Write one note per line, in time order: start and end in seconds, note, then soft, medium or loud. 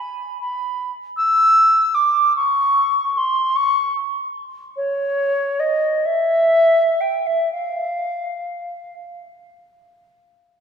0.00 0.40 B5 medium
0.41 0.91 B5 medium
1.16 1.96 E6 loud
1.94 2.35 D6 medium
2.36 3.18 C#6 medium
3.17 3.57 C6 medium
3.55 3.94 C#6 medium
4.76 5.61 C#5 medium
5.59 6.07 D#5 medium
6.05 7.02 E5 medium
7.00 7.28 G5 medium
7.26 7.50 E5 medium
7.52 8.94 F5 medium